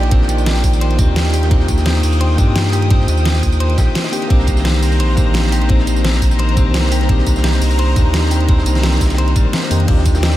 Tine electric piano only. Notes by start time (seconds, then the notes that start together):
Already playing: A#3 D4 D#4 F4 G4
0.09 A#3 D4 D#4 F4
0.14 C5
0.96 A#3 D4 D#4 F4
1.01 G4
1.48 A#3 D4 D#4 F4
1.53 G4
2.36 A#3 D4 D#4 F4
2.40 G4
2.88 A#3 D4 D#4 F4
2.93 C5
4.11 A#3 C4 D4 D#4 G4
4.28 A#3 C4 D4 D#4
4.32 G4
5.15 A#3 C4 D4 D#4
5.20 G4
5.67 A#3 C4 D4 D#4
5.72 C5
6.55 A#3 C4 D4 D#4
6.59 G4
7.07 A#3 C4 D4 D#4
7.11 G4
7.94 A#3 C4 D4 D#4
7.99 G4
8.46 A#3 C4 D4 D#4
8.51 C5
9.69 A#3 C4 D4 D#4 G4
9.86 A#3 D4 D#4 F4
9.90 G4